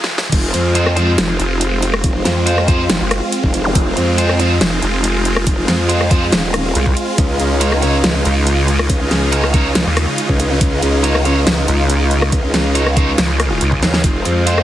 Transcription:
Already playing: F2 C3 G#3 F4
0.04 snare
0.18 snare
0.32 F1 G#3 C4 F4, kick, closed hi-hat, crash
0.54 F2, closed hi-hat
0.75 F4 G#4 C5, closed hi-hat
0.86 cross-stick
0.96 F4 G#4 C5, closed hi-hat
1.18 F1, snare, closed hi-hat
1.39 F1, closed hi-hat
1.61 closed hi-hat
1.82 closed hi-hat
1.94 cross-stick
2.04 F1, kick, closed hi-hat
2.25 F2, snare, closed hi-hat
2.46 F4 G#4 C5, closed hi-hat
2.58 cross-stick
2.68 F4 G#4 C5, kick, closed hi-hat
2.90 F1, snare, closed hi-hat
3.01 F#1
3.11 cross-stick, closed hi-hat
3.32 closed hi-hat
3.44 F1, kick
3.54 closed hi-hat
3.65 zap
3.75 F1, kick, closed hi-hat
3.97 F2, closed hi-hat
4.18 F4 G#4 C5, closed hi-hat
4.29 cross-stick
4.39 F4 G#4 C5, closed hi-hat
4.61 F1, snare, closed hi-hat
4.82 F1, closed hi-hat
5.04 closed hi-hat
5.25 closed hi-hat
5.36 cross-stick
5.47 F1, kick, closed hi-hat
5.68 F2, snare, closed hi-hat
5.89 F4 G#4 C5, closed hi-hat
6.01 cross-stick
6.11 F4 G#4 C5, kick, closed hi-hat
6.32 D#1, snare, closed hi-hat
6.54 cross-stick, closed hi-hat
6.75 C2, closed hi-hat
6.86 kick
6.97 closed hi-hat
7.18 C#2 C#3 D#4, kick, closed hi-hat
7.40 C#2, closed hi-hat
7.61 D#4 F4 C#5, closed hi-hat
7.72 cross-stick
7.82 D#4 F4 C#5, closed hi-hat
8.04 C#2, snare, closed hi-hat
8.25 C#2, closed hi-hat
8.47 closed hi-hat
8.68 closed hi-hat
8.79 cross-stick
8.90 C#2, kick, closed hi-hat
9.11 C#2, snare, closed hi-hat
9.32 D#4 F4 C#5, closed hi-hat
9.44 cross-stick
9.53 D#4 F4 C#5, kick, closed hi-hat
9.75 C#2, snare, closed hi-hat
9.86 D#2
9.97 cross-stick, closed hi-hat
10.18 closed hi-hat
10.29 C#2, kick
10.40 closed hi-hat
10.61 C#2, kick, closed hi-hat
10.82 C#2, closed hi-hat
11.04 D#4 F4 C#5, closed hi-hat
11.15 cross-stick
11.25 D#4 F4 C#5, closed hi-hat
11.47 C#2, snare, closed hi-hat
11.68 C#2, closed hi-hat
11.90 closed hi-hat
12.11 closed hi-hat
12.22 cross-stick
12.32 C#2, kick, closed hi-hat
12.54 C#2, snare, closed hi-hat
12.75 D#4 F4 C#5, closed hi-hat
12.87 cross-stick
12.96 D#4 F4 C#5, kick, closed hi-hat
13.18 C#2, snare, closed hi-hat
13.40 cross-stick, closed hi-hat
13.61 C#2, closed hi-hat
13.72 kick
13.82 D#2, snare, closed hi-hat
13.94 snare
14.04 F1 G#3 C4 F4, kick, closed hi-hat
14.25 F2, closed hi-hat
14.46 F4 G#4 C5, closed hi-hat
14.58 cross-stick

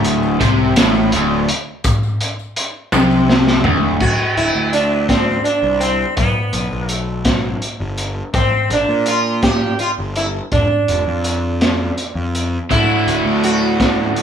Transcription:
Already playing: D1 D2
0.04 closed hi-hat, tambourine
0.23 tambourine
0.40 C2 C3, kick, closed hi-hat, tambourine
0.76 A1 A2, snare, closed hi-hat, tambourine
0.94 tambourine
1.12 D1 D2, closed hi-hat
1.49 closed hi-hat
1.84 kick, closed hi-hat, tambourine
2.03 tambourine
2.21 closed hi-hat, tambourine
2.39 tambourine
2.56 closed hi-hat, tambourine
2.92 C2 C3, high tom, tambourine
3.10 tambourine
3.29 snare
3.47 snare
3.64 D1 D2, floor tom
4.00 D1 F#4, kick, crash
4.37 D1 E4, closed hi-hat
4.55 D2
4.73 D4, closed hi-hat
5.09 C4, kick, snare, closed hi-hat
5.44 D4, closed hi-hat
5.63 C2
5.80 C4, closed hi-hat
6.17 B1 B3, kick, closed hi-hat
6.53 B1, closed hi-hat
6.72 B1
6.89 A3, closed hi-hat
7.25 kick, snare, closed hi-hat
7.62 closed hi-hat
7.80 G1
7.98 closed hi-hat
8.34 A#1 C4, kick, closed hi-hat
8.70 A#1 D4, closed hi-hat
8.89 A#2
9.06 F4, closed hi-hat
9.43 G4, kick, snare, closed hi-hat
9.79 F4, closed hi-hat
9.98 G1
10.15 E4, closed hi-hat
10.52 F1 D4, kick, closed hi-hat
10.88 F1, closed hi-hat
11.07 F2
11.24 closed hi-hat
11.61 snare, closed hi-hat
11.98 closed hi-hat
12.15 F2
12.35 closed hi-hat
12.70 D1 D2 A2 D3 A3 E4 F#4, kick, closed hi-hat
13.07 D1, closed hi-hat
13.25 D2
13.43 F#4, closed hi-hat
13.80 kick, snare, closed hi-hat
14.16 closed hi-hat

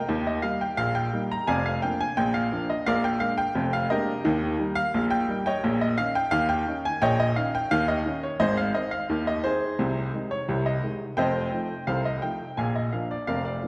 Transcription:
Already playing: A#4 D#5 G5
0.09 D#2 D#3
0.27 D#5
0.42 G3 A#3 D#4 F5
0.61 G5
0.77 A#1 A#2 F5
0.95 G5
1.13 G3 A#3 D#4
1.31 A#5
1.47 F1 F2 D5 F5 G#5
1.66 F5
1.82 F3 A#3 D4 G5
2.00 G#5
2.17 A#1 A#2 G5
2.34 F5
2.52 F3 A#3 D4
2.70 D#5
2.86 A#1 A#2 A#4 D5 F5
3.04 G5
3.20 G#3 A#3 D4 F5
3.38 G5
3.55 F1 F2
3.73 F5
3.90 G#3 A#3 D4 G4 A#4 D#5
4.25 D#2 D#3
4.59 G3 A#3 D#4
4.75 F5
4.94 A#1 A#2
5.11 G5
5.29 G3 A#3 D#4
5.46 C#5 D#5 G5
5.64 A#1 A#2
5.81 D#5
5.98 D#3 C#4 D#4 F5
6.15 G5
6.31 D#2 D#3 F5
6.49 G5
6.67 D#3 C#4 D#4
6.85 G#5
7.02 A#1 A#2 C#5 D#5 G5
7.20 D#5
7.36 D#3 C#4 D#4 F5
7.55 G5
7.71 D#2 D#3 F5
7.88 D#5
8.06 D#3 C#4 D#4
8.23 C#5
8.40 G#1 G#2 G#4 C5 D#5
8.57 F5
8.75 D#3 C4 D#4 D#5
8.91 F5
9.10 D#2 D#3
9.27 D#5
9.44 D#3 C4 D#4 G#4 C5
9.79 C2 C3
10.14 D#3 G#3 D#4
10.31 C#5
10.48 C2 C3
10.66 D#5
10.83 D#3 G#3 D#4
11.17 F1 F2 C5 D#5 G5
11.52 F3 A3 D#4
11.87 C2 C3 A4 C5 F5
12.05 D#5
12.22 F3 A3 D#4 G5
12.57 A#1 A#2 D5 F5 G#5
12.76 D#5
12.92 F3 A#3 D4 F5
13.11 D5
13.27 F1 F2 A#4 D5 F5
13.45 D5
13.63 F3 A#3 D4

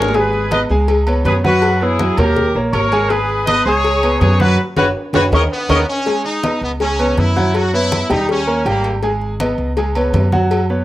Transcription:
Already playing: G#1 G#3 G#4 A#4 C#5 G#5
0.02 low bongo
0.08 low timbale
0.14 G#3 G#4 B4 G#5, cowbell, high conga, low agogo
0.33 high conga
0.51 B3 B4 D#5, cowbell, high conga, low agogo
0.70 C#2 G#3 G#4 G#5, high conga
0.88 cowbell, high conga, low agogo
1.07 B3 B4 C#5, high conga, low agogo
1.25 F#2 B3 G#4 B4 C#5, cowbell, high conga, low timbale, low agogo
1.44 F#3 F#4 B4 F#5, high conga
1.62 cowbell, high conga, low agogo
1.81 B3 E4 G#4 B4 C#5, high conga
1.99 F#3 F#4 F#5, cowbell, high conga, low agogo
2.17 D#2 A#3 G4 A#4 C#5, cowbell, high conga, low conga, low agogo
2.36 cowbell, high conga, low conga
2.54 A#1 A#3 A#4 C#5, high conga
2.72 G#1 A#4 C#5, cowbell, high conga, low timbale, low agogo
2.92 G#3 G#4 G#5, cowbell, high conga, low agogo
3.09 G#3 G#4 B4 G#5, cowbell, high conga, low agogo
3.29 high conga
3.46 B3 B4 D#5, cowbell, high conga, low agogo
3.65 C#2 G#3 G#4 C#5 G#5, high conga
3.84 cowbell, high conga, low agogo
4.03 B3 B4 C#5, high conga, low agogo
4.20 F#2 B3 G#4 B4 C#5, cowbell, high conga, low timbale, low agogo
4.39 F#3 F#4 B4 F#5, high conga
4.77 F#1 F#4 B4 C#5, cowbell, high conga, high timbale
5.13 F#1 F#4 B4 C#5, cowbell, high conga, high timbale
5.32 D#2 A#4 C#5 D#5, cowbell, high conga, high timbale
5.51 B3
5.69 D#2 A#4 C#5 D#5, cowbell, high conga, high timbale
5.88 C#4
6.06 G#3 G#4 G#5, cowbell, high conga, low agogo
6.24 D#4, high conga
6.43 B3 B4 D#5, cowbell, high conga, low agogo
6.61 C#2 B3, high conga
6.80 G#3 C#4 G#4 G#5, cowbell, high conga, low agogo
6.99 B3 B4 C#5, high conga, low agogo
7.17 F#2 E4, cowbell, high conga, low agogo
7.37 F#3 F#4 F#5, high conga
7.54 F#4, cowbell, high conga, low agogo
7.73 B3 E4 B4 C#5, high conga
7.92 cowbell, high conga, low agogo
8.10 D#2 G3 D#4 G4 G5, cowbell, high conga, low conga, low agogo
8.29 C#4, cowbell, high conga
8.47 A#3 A#4 C#5, high conga
8.65 G#1 G3 A#3 G4 G5, cowbell, high conga, low agogo
8.84 cowbell, high conga, low agogo
9.03 G#3 G#4 G#5, cowbell, high conga, low agogo
9.21 high conga
9.40 B3 B4 D#5, cowbell, high conga, low agogo
9.58 C#2, high conga
9.77 G#3 G#4 G#5, cowbell, high conga, low agogo
9.95 B3 B4 C#5, high conga, low agogo
10.13 F#2, cowbell, high conga, low timbale, low agogo
10.32 F#3 F#4 F#5, high conga
10.51 cowbell, high conga, low agogo
10.70 B3 B4 C#5, high conga

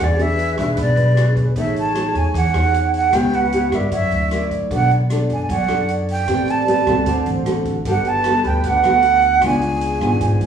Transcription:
0.00 E2 E3 D4 G#4 B4 C#5 D5
0.19 D4 G#4 C#5 E5, closed hi-hat
0.39 closed hi-hat
0.58 B1 D4 G#4 E5, kick, cross-stick, closed hi-hat
0.77 B1 B2, kick, closed hi-hat
0.81 D5
0.96 B1, closed hi-hat
1.17 D4 G#4 C#5, cross-stick, closed hi-hat
1.36 kick, closed hi-hat
1.55 A1 A3 D#4 G#4 C#5 E5, kick, closed hi-hat
1.76 A5, closed hi-hat
1.95 D#4 G#4 C#5, cross-stick, closed hi-hat
2.15 E2 G#5, closed hi-hat
2.34 E2 E3 F#5, kick, closed hi-hat
2.54 E2 D#4 G#4 C#5, cross-stick, closed hi-hat
2.74 closed hi-hat
2.94 F#5, closed hi-hat
3.13 C#2 C#3 B3 E4 G4 B4 G5, kick, cross-stick, closed hi-hat
3.33 F#5, closed hi-hat
3.52 B3 E4 G4, closed hi-hat
3.72 G2 E4 A#4 D5 E5, kick, cross-stick, closed hi-hat
3.91 F#2 F#3 E5, kick, closed hi-hat
4.11 D2, closed hi-hat
4.31 E4 A#4 D5, cross-stick, closed hi-hat
4.51 kick, closed hi-hat
4.71 B1 B3 D4 A4 C#5 D5 F#5, kick, closed hi-hat
4.91 closed hi-hat
5.10 D4 A4, cross-stick, closed hi-hat
5.29 F#2 G#5, closed hi-hat
5.42 G#5
5.49 F#2 F#3, kick, closed hi-hat
5.53 F#5
5.68 F#2 D4 A4, cross-stick, closed hi-hat
5.88 closed hi-hat
6.09 G5, closed hi-hat
6.28 A1 A3 C4 G4 B4 D5, kick, cross-stick, closed hi-hat
6.48 A5, closed hi-hat
6.67 C4 G4 B4, closed hi-hat
6.87 C2 C4 F#4 A4, kick, cross-stick, closed hi-hat
7.06 D2 D3 C5, kick, closed hi-hat
7.26 A1, closed hi-hat
7.46 C4 F#4 A4, cross-stick, closed hi-hat
7.65 kick, closed hi-hat
7.85 G1 G3 B3 F#4 A4 B4, kick, closed hi-hat
7.90 F#5
8.05 A5, closed hi-hat
8.24 B3 F#4 A4, cross-stick, closed hi-hat
8.44 D2 G5, closed hi-hat
8.63 D2 D3, kick, closed hi-hat
8.68 F#5
8.84 D2 B3 F#4 A4, cross-stick, closed hi-hat
9.02 closed hi-hat
9.22 closed hi-hat
9.42 C#2 C#3 B3 D4 F4 G#4, kick, cross-stick, closed hi-hat
9.46 G#5
9.61 closed hi-hat
9.81 closed hi-hat
10.01 G#1 B3 D4 F4, kick, cross-stick, closed hi-hat
10.21 G#1 G#2, kick, closed hi-hat
10.41 G#1, closed hi-hat

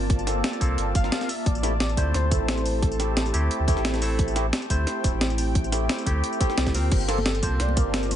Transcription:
Already playing: G1 A#3 C4 F4 A#4 D5 A5
0.10 kick, closed hi-hat
0.19 tambourine
0.27 A#3 C4 F4 A4, snare, closed hi-hat, tambourine
0.44 snare, closed hi-hat
0.53 tambourine
0.60 C2 A#3 C4 F4 A4, kick, closed hi-hat, tambourine
0.78 G1, closed hi-hat
0.95 G1 F5, kick, closed hi-hat, tambourine
1.03 A#3 C4 F4 A#4, snare
1.12 snare, closed hi-hat
1.21 snare, tambourine
1.29 G4 C5 E5, open hi-hat, tambourine
1.46 A1 D5, kick, closed hi-hat
1.55 tambourine
1.63 A3 C4 E4 G4, snare, closed hi-hat, tambourine
1.80 snare, closed hi-hat
1.89 tambourine
1.97 D2 A3 C4 E4 C5, kick, closed hi-hat, tambourine
2.14 D2 C5, snare, closed hi-hat
2.30 A3 C4 E4 A4, kick, closed hi-hat, tambourine
2.40 A1
2.48 snare, closed hi-hat
2.57 tambourine
2.66 open hi-hat, tambourine
2.83 A4, kick, closed hi-hat
2.92 tambourine
2.99 A3 C4 E4 G4, snare, closed hi-hat, tambourine
3.17 snare, closed hi-hat
3.26 tambourine
3.33 D2 A3 C4 E4 G4, closed hi-hat, tambourine
3.51 closed hi-hat
3.60 D2
3.67 A3 C4 E4 G4, kick, closed hi-hat, tambourine
3.77 A1, snare
3.85 snare, closed hi-hat
3.94 snare, tambourine
4.01 A3 C4 E4 A4 G5, open hi-hat, tambourine
4.19 kick, closed hi-hat
4.28 tambourine
4.36 A3 C4 E4 G4, snare, closed hi-hat, tambourine
4.53 snare, closed hi-hat
4.62 tambourine
4.70 D2 A3 C4 E4 C5, kick, closed hi-hat, tambourine
4.87 snare, closed hi-hat
5.03 E1 A3 C4 E4 A4, kick, closed hi-hat, tambourine
5.13 A1
5.21 snare, closed hi-hat
5.30 tambourine
5.38 open hi-hat, tambourine
5.55 kick, closed hi-hat
5.64 tambourine
5.72 A3 C4 E4 G4, snare, closed hi-hat, tambourine
5.89 snare, closed hi-hat
5.98 tambourine
6.06 D2 A3 C4 E4 G4, kick, closed hi-hat, tambourine
6.24 closed hi-hat
6.33 tambourine
6.40 A3 C4 E4 G4, kick, closed hi-hat, tambourine
6.50 snare
6.58 C2, snare, closed hi-hat
6.67 kick, snare, tambourine
6.74 D2 A#3 C4 F4 A#4, open hi-hat, tambourine
6.92 G1 A#3 F4 A5, kick, closed hi-hat, crash
7.01 tambourine
7.08 A#3 C4 F4 A4, snare, closed hi-hat, tambourine
7.18 high conga
7.26 snare, closed hi-hat
7.35 tambourine
7.42 C2 A#3 C4 F4 C5, kick, closed hi-hat, tambourine
7.60 C2 D5, snare, closed hi-hat
7.69 high conga
7.76 A#3 C4 F4 A#4, kick, closed hi-hat, tambourine
7.86 G1
7.94 snare, closed hi-hat
8.03 tambourine
8.11 C5, open hi-hat, tambourine, high conga

